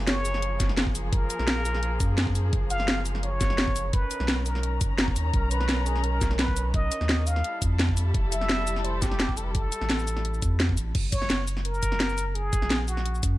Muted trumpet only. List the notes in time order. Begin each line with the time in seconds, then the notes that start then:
0.07 C#5
1.12 A#4
2.71 F5
3.24 C#5
3.94 B4
4.46 A#4
5.34 A#4
5.51 B4
5.86 G#4
6.04 A#4
6.39 B4
6.74 D#5
7.27 F5
8.32 E5
8.85 C5
9.02 G4
9.37 A4
9.45 B4
9.52 A4
11.13 C#5
11.65 A#4
12.35 G#4
12.88 F#4